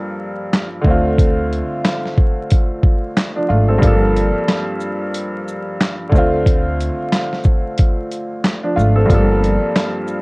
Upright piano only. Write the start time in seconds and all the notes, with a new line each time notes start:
Already playing: G2 F3 A#3 A4
0.81 D3 A3
0.87 C4 F4
3.36 F3 D4
3.49 A3 F4
3.68 C4 A4
3.78 G2 F3
3.84 A#3 A4
6.09 D3 A3
6.15 C4 F4
8.63 F3 D4
8.76 A3 F4
8.96 C4 A4
9.06 G2 F3
9.11 A#3 A4